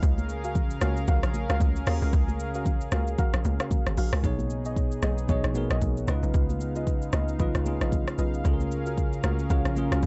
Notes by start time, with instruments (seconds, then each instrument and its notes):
Already playing: analog synth pad C#3 F5
0.02 log drum bass C#2, analog synth pad C#4 G#4 A#4, kick, shaker
0.18 high conga, shaker
0.29 shaker
0.44 synth stab F#4 A#4 F5, shaker
0.55 kick, low conga, shaker
0.70 shaker
0.81 log drum bass C#2, synth stab F#4 A#4 F5, cross-stick, high conga, shaker
0.97 shaker
1.08 log drum bass C#2, synth stab F#4 A#4 F5, kick, low conga, shaker
1.23 log drum bass A#1, cross-stick, shaker
1.34 high conga, shaker
1.49 log drum bass C#2, synth stab F#4 A#4 F5, cross-stick, shaker
1.60 log drum bass C#2, kick, high conga, low conga, shaker
1.76 shaker
1.87 log drum bass D#2, synth stab F#4 A#4 F5, cross-stick, open hi-hat, shaker
2.02 log drum bass C#2, shaker
2.13 log drum bass C#2, kick, shaker
2.28 high conga, shaker
2.40 shaker
2.54 synth stab F#4 A#4 F5, shaker
2.65 kick, low conga, shaker
2.81 shaker
2.92 log drum bass C#2, synth stab F#4 A#4 F5, cross-stick, high conga, shaker
3.07 shaker
3.18 synth stab F#4 A#4 F5, kick, low conga, shaker
3.34 log drum bass A#1, cross-stick, shaker
3.45 log drum bass C#2, high conga, shaker
3.60 synth stab F#4 A#4 F5, cross-stick, shaker
3.71 kick, high conga, low conga, shaker
3.86 log drum bass G#1, cross-stick, shaker
3.97 log drum bass A#1, synth stab F#4 A#4 F5, open hi-hat, shaker
4.13 log drum bass C#2, cross-stick, shaker
4.22 log drum bass B1, tine electric piano B2 B3 D#4 G#4 C#5, analog synth pad B3 D#4 G#4, kick, shaker
4.39 high conga, shaker
4.50 shaker
4.65 synth stab G#4 C#5 D#5, shaker
4.76 kick, shaker
4.92 shaker
5.02 log drum bass B1, synth stab G#4 C#5 D#5, cross-stick, high conga, shaker
5.18 shaker
5.27 log drum bass B1, tine electric piano B2 B3 D#4 G#4 C#5, synth stab G#4 C#5 D#5, kick, low conga, shaker
5.44 log drum bass A#1, cross-stick, shaker
5.54 tine electric piano B2 B3 D#4 G#4 A#4, high conga, shaker
5.70 log drum bass B1, synth stab G#4 C#5 D#5, cross-stick, shaker
5.81 log drum bass B1, kick, high conga, low conga, shaker
5.97 shaker
6.06 log drum bass C#2, tine electric piano C#3 C#4 D#4 F4 B4, analog synth pad C#3 G#3 D#4 F5, synth stab F4 B4 D#5, cross-stick, shaker
6.23 log drum bass B1, shaker
6.34 log drum bass C#2, kick, shaker
6.49 high conga, shaker
6.61 shaker
6.76 synth stab F4 B4 D#5, shaker
6.87 kick, shaker
7.02 shaker
7.13 log drum bass C#2, synth stab F4 B4 D#5, cross-stick, high conga, shaker
7.28 shaker
7.38 log drum bass B1, tine electric piano C#3 C#4 D#4 F4, synth stab F4 B4 D#5, kick, low conga, shaker
7.42 tine electric piano B4
7.55 log drum bass C#2, cross-stick, shaker
7.64 tine electric piano C#3 C#4 D#4 F4 G#4, high conga, shaker
7.81 log drum bass A#1, synth stab F4 B4 D#5, cross-stick, shaker
7.92 kick, high conga, low conga, shaker
8.08 cross-stick, shaker
8.18 log drum bass B1, synth stab F4 B4 D#5, shaker
8.34 shaker
8.43 log drum bass C#2, tine electric piano C#3 C#4 F4 G#4 A4, analog synth pad C#4 G#4 A#4, kick, shaker
8.54 tine electric piano A#4
8.60 high conga, shaker
8.72 shaker
8.86 synth stab F#4 A#4 F5, shaker
8.98 kick, shaker
9.13 shaker
9.23 log drum bass C#2, synth stab F#4 A#4 F5, cross-stick, high conga, shaker
9.39 shaker
9.49 log drum bass C#2, tine electric piano C#3 C#4 F4 G#4 C#5, synth stab F#4 A#4 F5, kick, low conga, shaker
9.65 log drum bass A#1, cross-stick, shaker
9.75 tine electric piano C#3 C#4 F4 G#4 A#4, high conga, shaker
9.91 log drum bass C#2, synth stab F#4 A#4 F5, cross-stick, shaker
10.03 log drum bass C#2, kick, high conga, low conga, shaker